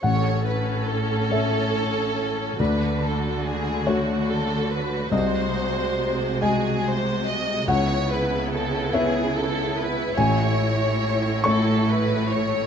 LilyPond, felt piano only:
\new Staff \with { instrumentName = "Felt piano" } { \time 6/8 \key a \major \tempo 4. = 47 <a,, fis''>4. <a a' cis'' e''>4. | <d, d''>4. <a fis' cis''>4. | <bis,, dis''>4. <gis fis' dis'' gis''>4. | <cis, fis''>4. <b e' cis'' e''>4. |
<a,, gis''>4. <a e' cis'' cis'''>4. | }